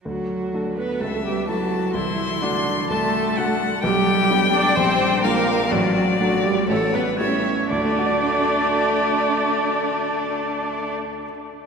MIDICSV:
0, 0, Header, 1, 5, 480
1, 0, Start_track
1, 0, Key_signature, 2, "major"
1, 0, Tempo, 472813
1, 60, Time_signature, 4, 2, 24, 8
1, 6299, Tempo, 502513
1, 11513, End_track
2, 0, Start_track
2, 0, Title_t, "Violin"
2, 0, Program_c, 0, 40
2, 1026, Note_on_c, 0, 76, 46
2, 1472, Note_off_c, 0, 76, 0
2, 1499, Note_on_c, 0, 81, 50
2, 1970, Note_off_c, 0, 81, 0
2, 1976, Note_on_c, 0, 84, 72
2, 2925, Note_off_c, 0, 84, 0
2, 2947, Note_on_c, 0, 81, 69
2, 3429, Note_on_c, 0, 78, 69
2, 3444, Note_off_c, 0, 81, 0
2, 3881, Note_off_c, 0, 78, 0
2, 3887, Note_on_c, 0, 79, 92
2, 5290, Note_off_c, 0, 79, 0
2, 5322, Note_on_c, 0, 77, 70
2, 5806, Note_on_c, 0, 74, 75
2, 5821, Note_off_c, 0, 77, 0
2, 6764, Note_off_c, 0, 74, 0
2, 6770, Note_on_c, 0, 73, 62
2, 7237, Note_off_c, 0, 73, 0
2, 7245, Note_on_c, 0, 76, 53
2, 7485, Note_off_c, 0, 76, 0
2, 7728, Note_on_c, 0, 57, 72
2, 10829, Note_off_c, 0, 57, 0
2, 11513, End_track
3, 0, Start_track
3, 0, Title_t, "Viola"
3, 0, Program_c, 1, 41
3, 54, Note_on_c, 1, 66, 60
3, 743, Note_off_c, 1, 66, 0
3, 782, Note_on_c, 1, 71, 64
3, 1023, Note_on_c, 1, 69, 58
3, 1039, Note_off_c, 1, 71, 0
3, 1262, Note_off_c, 1, 69, 0
3, 1268, Note_on_c, 1, 67, 64
3, 1502, Note_off_c, 1, 67, 0
3, 1509, Note_on_c, 1, 66, 65
3, 1985, Note_on_c, 1, 64, 73
3, 2001, Note_off_c, 1, 66, 0
3, 2457, Note_on_c, 1, 62, 72
3, 2472, Note_off_c, 1, 64, 0
3, 2950, Note_on_c, 1, 69, 75
3, 2965, Note_off_c, 1, 62, 0
3, 3658, Note_off_c, 1, 69, 0
3, 3889, Note_on_c, 1, 67, 97
3, 4563, Note_off_c, 1, 67, 0
3, 4593, Note_on_c, 1, 74, 99
3, 4827, Note_on_c, 1, 72, 89
3, 4843, Note_off_c, 1, 74, 0
3, 5308, Note_off_c, 1, 72, 0
3, 5314, Note_on_c, 1, 70, 94
3, 5794, Note_on_c, 1, 66, 86
3, 5810, Note_off_c, 1, 70, 0
3, 6282, Note_off_c, 1, 66, 0
3, 6288, Note_on_c, 1, 66, 88
3, 6519, Note_on_c, 1, 67, 86
3, 6534, Note_off_c, 1, 66, 0
3, 6748, Note_off_c, 1, 67, 0
3, 6754, Note_on_c, 1, 69, 91
3, 6997, Note_on_c, 1, 71, 82
3, 7011, Note_off_c, 1, 69, 0
3, 7232, Note_off_c, 1, 71, 0
3, 7237, Note_on_c, 1, 73, 75
3, 7719, Note_off_c, 1, 73, 0
3, 7728, Note_on_c, 1, 74, 85
3, 10829, Note_off_c, 1, 74, 0
3, 11513, End_track
4, 0, Start_track
4, 0, Title_t, "Grand piano"
4, 0, Program_c, 2, 0
4, 54, Note_on_c, 2, 38, 41
4, 224, Control_c, 2, 64, 127
4, 529, Note_off_c, 2, 38, 0
4, 545, Note_on_c, 2, 57, 33
4, 550, Note_on_c, 2, 62, 32
4, 553, Note_on_c, 2, 69, 36
4, 985, Note_off_c, 2, 57, 0
4, 988, Note_off_c, 2, 62, 0
4, 989, Note_off_c, 2, 69, 0
4, 1017, Note_on_c, 2, 37, 45
4, 1048, Control_c, 2, 64, 0
4, 1237, Control_c, 2, 64, 127
4, 1487, Note_off_c, 2, 37, 0
4, 1502, Note_on_c, 2, 57, 36
4, 1507, Note_on_c, 2, 64, 35
4, 1508, Note_on_c, 2, 69, 40
4, 1940, Note_off_c, 2, 57, 0
4, 1943, Note_off_c, 2, 64, 0
4, 1944, Note_off_c, 2, 69, 0
4, 1971, Note_on_c, 2, 36, 53
4, 2004, Control_c, 2, 64, 0
4, 2156, Control_c, 2, 64, 127
4, 2438, Note_off_c, 2, 36, 0
4, 2461, Note_on_c, 2, 57, 44
4, 2465, Note_on_c, 2, 62, 40
4, 2471, Note_on_c, 2, 66, 47
4, 2908, Note_off_c, 2, 57, 0
4, 2910, Note_off_c, 2, 62, 0
4, 2913, Note_off_c, 2, 66, 0
4, 2944, Note_on_c, 2, 36, 54
4, 3406, Note_off_c, 2, 36, 0
4, 3427, Note_on_c, 2, 57, 47
4, 3433, Note_on_c, 2, 62, 45
4, 3434, Note_on_c, 2, 66, 54
4, 3855, Note_off_c, 2, 57, 0
4, 3857, Note_off_c, 2, 62, 0
4, 3858, Note_off_c, 2, 66, 0
4, 3894, Note_on_c, 2, 35, 69
4, 3911, Control_c, 2, 64, 0
4, 4060, Control_c, 2, 64, 127
4, 4354, Note_off_c, 2, 35, 0
4, 4362, Note_on_c, 2, 59, 50
4, 4368, Note_on_c, 2, 62, 56
4, 4373, Note_on_c, 2, 67, 58
4, 4799, Note_off_c, 2, 59, 0
4, 4803, Note_off_c, 2, 62, 0
4, 4805, Note_off_c, 2, 67, 0
4, 4839, Note_on_c, 2, 34, 64
4, 4862, Control_c, 2, 64, 0
4, 4999, Control_c, 2, 64, 127
4, 5305, Note_off_c, 2, 34, 0
4, 5320, Note_on_c, 2, 56, 50
4, 5323, Note_on_c, 2, 62, 52
4, 5326, Note_on_c, 2, 65, 59
4, 5764, Note_off_c, 2, 56, 0
4, 5766, Note_off_c, 2, 62, 0
4, 5767, Note_off_c, 2, 65, 0
4, 5803, Note_on_c, 2, 33, 71
4, 5825, Control_c, 2, 64, 0
4, 5995, Control_c, 2, 64, 127
4, 6281, Note_off_c, 2, 33, 0
4, 6295, Note_on_c, 2, 57, 51
4, 6297, Note_on_c, 2, 62, 52
4, 6303, Note_on_c, 2, 66, 56
4, 6729, Note_off_c, 2, 57, 0
4, 6730, Note_off_c, 2, 62, 0
4, 6733, Note_off_c, 2, 66, 0
4, 6764, Note_on_c, 2, 33, 60
4, 6790, Control_c, 2, 64, 0
4, 6968, Control_c, 2, 64, 127
4, 7230, Note_off_c, 2, 33, 0
4, 7242, Note_on_c, 2, 57, 44
4, 7246, Note_on_c, 2, 64, 43
4, 7251, Note_on_c, 2, 67, 45
4, 7693, Note_off_c, 2, 57, 0
4, 7695, Note_off_c, 2, 64, 0
4, 7698, Note_off_c, 2, 67, 0
4, 7734, Note_on_c, 2, 38, 60
4, 7751, Control_c, 2, 64, 0
4, 7800, Note_on_c, 2, 50, 61
4, 7868, Note_on_c, 2, 57, 60
4, 7934, Note_on_c, 2, 62, 59
4, 7944, Control_c, 2, 64, 127
4, 8001, Note_on_c, 2, 66, 60
4, 8069, Note_on_c, 2, 74, 59
4, 10835, Note_off_c, 2, 38, 0
4, 10901, Note_off_c, 2, 50, 0
4, 10970, Note_off_c, 2, 57, 0
4, 11035, Note_off_c, 2, 62, 0
4, 11103, Note_off_c, 2, 66, 0
4, 11117, Control_c, 2, 64, 0
4, 11170, Note_off_c, 2, 74, 0
4, 11513, End_track
5, 0, Start_track
5, 0, Title_t, "Cello"
5, 0, Program_c, 3, 42
5, 52, Note_on_c, 3, 54, 47
5, 788, Note_on_c, 3, 59, 54
5, 804, Note_off_c, 3, 54, 0
5, 1025, Note_on_c, 3, 57, 48
5, 1040, Note_off_c, 3, 59, 0
5, 1266, Note_off_c, 3, 57, 0
5, 1270, Note_on_c, 3, 55, 55
5, 1503, Note_off_c, 3, 55, 0
5, 1514, Note_on_c, 3, 54, 59
5, 1975, Note_off_c, 3, 54, 0
5, 1981, Note_on_c, 3, 52, 58
5, 2458, Note_on_c, 3, 50, 61
5, 2473, Note_off_c, 3, 52, 0
5, 2942, Note_off_c, 3, 50, 0
5, 2948, Note_on_c, 3, 57, 75
5, 3642, Note_off_c, 3, 57, 0
5, 3893, Note_on_c, 3, 55, 79
5, 4603, Note_on_c, 3, 62, 80
5, 4618, Note_off_c, 3, 55, 0
5, 4837, Note_off_c, 3, 62, 0
5, 4843, Note_on_c, 3, 60, 88
5, 5312, Note_off_c, 3, 60, 0
5, 5320, Note_on_c, 3, 58, 80
5, 5795, Note_off_c, 3, 58, 0
5, 5800, Note_on_c, 3, 54, 72
5, 6285, Note_off_c, 3, 54, 0
5, 6293, Note_on_c, 3, 54, 71
5, 6370, Note_off_c, 3, 54, 0
5, 6527, Note_on_c, 3, 55, 68
5, 6750, Note_off_c, 3, 55, 0
5, 6756, Note_on_c, 3, 57, 76
5, 6832, Note_off_c, 3, 57, 0
5, 7004, Note_on_c, 3, 59, 73
5, 7080, Note_off_c, 3, 59, 0
5, 7247, Note_on_c, 3, 61, 66
5, 7724, Note_off_c, 3, 61, 0
5, 7728, Note_on_c, 3, 62, 67
5, 10830, Note_off_c, 3, 62, 0
5, 11513, End_track
0, 0, End_of_file